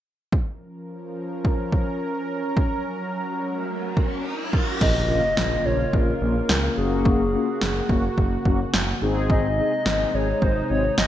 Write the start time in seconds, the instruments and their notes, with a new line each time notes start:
0.32 analog synth pad F3 C#4 A#4, kick
1.45 kick
1.72 kick
2.29 analog synth pad F#3
2.57 kick, riser
3.97 kick
4.53 kick
4.81 analog synth bass A#1, analog synth pad C#3 A#3 F4, soft synth lead D#5, kick, crash, impact
5.09 analog polysynth A#3 C#4 F4
5.37 analog synth bass A#1, snare
5.65 analog synth bass A#1, analog polysynth A#3 C#4 F4, soft synth lead C#5
5.93 analog synth bass A#1, soft synth lead A#4, kick
6.21 analog synth bass A#1, analog polysynth A#3 C#4 F4
6.49 analog synth bass C#2, snare
6.77 analog synth bass F#1, analog polysynth A#3 C#4 F#4, analog synth pad F#4, soft synth lead G#4
7.05 kick
7.34 analog polysynth A#3 C#4 F4
7.61 analog synth bass F#1, snare
7.89 analog synth bass F#1, analog polysynth A#3 C#4 F#4, kick
8.18 analog synth bass F#1, kick
8.45 analog synth bass F#1, analog polysynth A#3 C#4 F#4, kick
8.74 analog synth bass F#1, snare
9.02 analog synth bass G#1, analog synth pad C3 G#3 D#4, analog polysynth C4 D#4 G#4
9.30 soft synth lead D#5, kick
9.58 analog polysynth C4 D#4 G#4
9.86 analog synth bass G#1, snare
10.14 analog synth bass G#1, analog polysynth C4 D#4 G#4, soft synth lead C#5
10.42 analog synth bass G#1, soft synth lead C5, kick
10.70 analog synth bass G#1, analog polysynth C4 D#4 F#4, soft synth lead C#5
10.98 analog synth bass G#1, soft synth lead D#5, snare